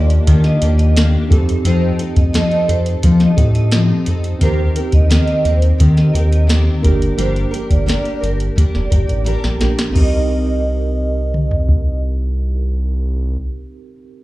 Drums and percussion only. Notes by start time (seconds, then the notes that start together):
0.10 closed hi-hat
0.27 kick, closed hi-hat
0.44 snare, closed hi-hat
0.62 closed hi-hat
0.79 closed hi-hat
0.97 snare, closed hi-hat
1.31 kick, closed hi-hat
1.49 closed hi-hat
1.65 closed hi-hat
1.99 closed hi-hat
2.16 kick, closed hi-hat
2.34 snare, closed hi-hat
2.51 closed hi-hat
2.69 closed hi-hat
2.86 closed hi-hat
3.03 kick, closed hi-hat
3.20 snare, closed hi-hat
3.38 kick, closed hi-hat
3.55 closed hi-hat
3.71 snare, closed hi-hat
4.06 closed hi-hat
4.24 closed hi-hat
4.41 kick, closed hi-hat
4.76 closed hi-hat
4.92 kick, closed hi-hat
5.11 snare, closed hi-hat
5.27 closed hi-hat
5.45 closed hi-hat
5.62 closed hi-hat
5.80 kick, closed hi-hat
5.97 snare, closed hi-hat
6.15 closed hi-hat
6.32 closed hi-hat
6.49 snare, closed hi-hat
6.84 kick, closed hi-hat
7.02 closed hi-hat
7.19 closed hi-hat
7.36 closed hi-hat
7.54 closed hi-hat
7.70 kick, closed hi-hat
7.88 snare, closed hi-hat
8.05 closed hi-hat
8.24 closed hi-hat
8.40 closed hi-hat
8.58 kick, closed hi-hat
8.75 snare
8.92 kick, closed hi-hat
9.09 closed hi-hat
9.26 closed hi-hat
9.44 snare
9.61 snare, closed hi-hat
9.79 snare, closed hi-hat
9.96 kick, crash
11.34 mid tom
11.51 floor tom
11.69 kick